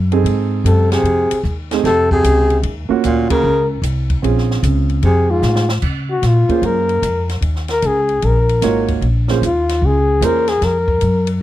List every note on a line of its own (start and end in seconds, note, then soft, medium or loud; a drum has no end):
0.00 0.23 F#2 medium
0.12 0.62 C4 medium
0.12 0.62 D#4 medium
0.12 0.63 G#4 medium
0.12 0.62 A4 medium
0.12 ride soft
0.24 0.63 G#2 medium
0.24 ride medium
0.64 1.02 F#2 medium
0.64 0.89 C3 medium
0.64 0.90 A4 medium
0.64 hi-hat pedal medium
0.64 ride medium
0.92 1.41 C3 medium
0.92 1.41 G#4 medium
0.92 snare medium
0.92 ride soft
1.03 1.28 F2 medium
1.03 ride soft
1.31 muted upright bass stroke soft
1.31 ride medium
1.43 1.82 D#2 medium
1.43 hi-hat pedal soft
1.71 1.83 A3 medium
1.71 1.84 C4 medium
1.71 1.84 D#4 medium
1.71 1.84 G#4 medium
1.71 snare soft
1.71 ride soft
1.84 2.22 F2 medium
1.84 2.09 C3 medium
1.84 2.09 A4 medium
1.84 snare soft
1.84 ride soft
2.11 2.60 C3 medium
2.11 2.61 G#4 medium
2.11 kick medium
2.24 2.62 C#2 medium
2.24 hi-hat pedal medium
2.24 ride medium
2.50 ride soft
2.63 2.88 D#2 medium
2.63 ride medium
2.89 3.40 A#3 medium
2.89 3.41 C#4 medium
2.89 3.41 F4 medium
2.89 3.41 F#4 medium
2.89 muted upright bass stroke soft
3.04 3.43 D2 medium
3.04 3.29 A#2 medium
3.04 3.29 F4 medium
3.04 hi-hat pedal medium
3.04 ride medium
3.30 3.67 C#3 medium
3.30 3.68 A#4 medium
3.30 kick medium
3.30 ride medium
3.44 3.81 C#2 medium
3.82 4.21 C2 medium
3.82 hi-hat pedal medium
3.82 ride medium
4.10 kick soft
4.10 ride soft
4.22 4.62 A#1 medium
4.22 5.02 C4 medium
4.22 5.03 C#4 medium
4.22 5.03 F4 medium
4.22 5.03 G#4 medium
4.22 ride medium
4.38 snare soft
4.51 snare soft
4.63 5.02 C#2 medium
4.63 hi-hat pedal medium
4.63 ride medium
4.89 ride soft
5.02 5.41 F2 medium
5.02 5.31 C3 medium
5.02 5.32 G#4 medium
5.02 ride soft
5.30 5.69 G#2 medium
5.30 5.70 F4 medium
5.42 5.81 A2 medium
5.42 snare soft
5.42 hi-hat pedal medium
5.56 snare medium
5.69 snare medium
5.82 6.21 C#3 medium
5.82 kick medium
5.82 crash medium
6.11 6.28 F#4 medium
6.22 6.47 A#2 medium
6.22 snare soft
6.22 hi-hat pedal medium
6.22 ride medium
6.27 6.67 F4 medium
6.49 7.00 A#3 medium
6.49 7.00 C#4 soft
6.49 7.00 F4 medium
6.49 7.00 G#4 medium
6.49 7.00 C5 medium
6.49 muted upright bass stroke soft
6.49 kick soft
6.49 ride soft
6.62 7.01 F#2 medium
6.62 7.30 A#4 medium
6.62 ride medium
6.89 ride soft
7.02 7.40 F2 medium
7.02 hi-hat pedal medium
7.02 ride medium
7.29 snare soft
7.29 ride soft
7.41 7.80 D#2 medium
7.41 ride medium
7.56 snare soft
7.68 7.88 A#4 medium
7.68 snare soft
7.68 ride soft
7.82 8.21 C#2 medium
7.82 hi-hat pedal soft
7.82 ride medium
7.87 8.27 G#4 medium
8.09 ride soft
8.22 8.61 A#1 medium
8.22 8.90 A#4 medium
8.22 ride medium
8.49 ride soft
8.61 9.00 G#1 medium
8.61 9.02 A#3 medium
8.61 9.02 D#4 medium
8.61 9.02 F4 medium
8.61 9.03 F#4 medium
8.61 9.03 C#5 medium
8.61 snare soft
8.61 hi-hat pedal medium
8.61 ride medium
8.88 kick medium
8.88 ride soft
9.01 9.40 A#1 medium
9.01 ride soft
9.28 9.41 A#3 medium
9.28 9.41 C#4 medium
9.28 9.41 F4 medium
9.28 9.41 G#4 medium
9.28 9.41 C5 medium
9.28 snare medium
9.42 9.80 D#2 medium
9.42 hi-hat pedal medium
9.42 ride medium
9.46 9.87 F4 medium
9.69 snare soft
9.69 ride medium
9.82 10.20 C#2 medium
9.86 10.26 G#4 medium
10.21 10.60 E2 medium
10.21 10.45 A#3 medium
10.21 10.45 C#4 medium
10.21 10.46 F4 medium
10.21 10.46 G#4 medium
10.21 10.50 A#4 medium
10.21 10.46 C5 medium
10.21 hi-hat pedal medium
10.21 ride medium
10.48 10.66 G#4 medium
10.48 snare soft
10.48 ride soft
10.61 11.00 F2 medium
10.61 11.29 A#4 medium
10.61 snare soft
10.61 ride soft
10.88 kick medium
11.01 11.40 F#2 medium
11.01 hi-hat pedal soft
11.01 ride medium
11.27 ride medium